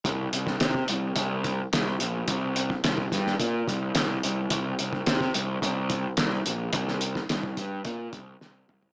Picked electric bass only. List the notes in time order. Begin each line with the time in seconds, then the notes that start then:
0.05 C2
0.33 C2
0.61 C3
0.89 C2
1.17 C2
1.73 C2
2.01 A#1
2.28 C2
2.84 C2
3.12 G2
3.40 A#2
3.68 C2
3.96 C2
4.25 C2
4.51 C2
4.80 C2
5.08 C3
5.35 C2
5.62 C2
6.18 C2
6.47 A#1
6.74 C2
7.31 C2
7.58 G2
7.85 A#2
8.13 C2
8.42 C2
8.70 C2